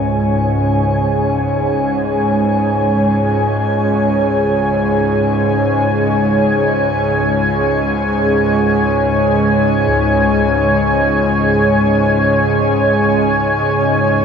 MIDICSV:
0, 0, Header, 1, 4, 480
1, 0, Start_track
1, 0, Tempo, 500000
1, 13679, End_track
2, 0, Start_track
2, 0, Title_t, "Analog synth pad"
2, 0, Program_c, 0, 89
2, 0, Note_on_c, 0, 56, 78
2, 0, Note_on_c, 0, 61, 55
2, 0, Note_on_c, 0, 73, 69
2, 0, Note_on_c, 0, 80, 69
2, 13679, Note_off_c, 0, 56, 0
2, 13679, Note_off_c, 0, 61, 0
2, 13679, Note_off_c, 0, 73, 0
2, 13679, Note_off_c, 0, 80, 0
2, 13679, End_track
3, 0, Start_track
3, 0, Title_t, "Kettle gongs"
3, 0, Program_c, 1, 14
3, 0, Note_on_c, 1, 44, 51
3, 4322, Note_off_c, 1, 44, 0
3, 9483, Note_on_c, 1, 37, 52
3, 13679, Note_off_c, 1, 37, 0
3, 13679, End_track
4, 0, Start_track
4, 0, Title_t, "Synth drone"
4, 0, Program_c, 2, 95
4, 0, Note_on_c, 2, 37, 71
4, 0, Note_on_c, 2, 44, 73
4, 13679, Note_off_c, 2, 37, 0
4, 13679, Note_off_c, 2, 44, 0
4, 13679, End_track
0, 0, End_of_file